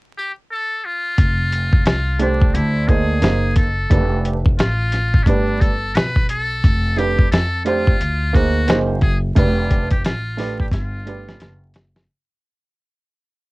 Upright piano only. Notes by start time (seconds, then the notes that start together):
2.19 A3 D4 G4 C5
2.87 A#3 D#4 G#4 C5
3.22 A#3 D#4 G#4 C5
3.90 A3 D4 G4 B4
5.26 A3 D4 G4 B4
6.97 A3 D4 G4 B4
7.65 A3 D4 G4 C5
8.33 A#3 D#4 G#4 C5
8.67 A#3 D#4 G#4 C5
9.35 A3 D4 G4 B4
10.37 A3 D4 G4 B4
11.06 A3 D4 G4 B4